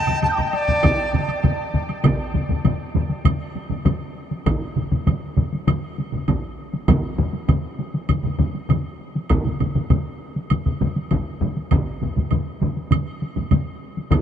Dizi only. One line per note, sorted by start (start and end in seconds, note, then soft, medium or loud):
0.00 0.22 A5 medium
0.23 0.29 A5 medium
0.29 0.36 D#6 soft
0.29 0.31 G6 soft
0.36 0.42 A#5 soft
0.36 0.38 D6 soft
0.43 0.49 G5 soft
0.43 0.45 A5 soft
0.50 1.44 D5 medium
0.50 0.55 D#5 soft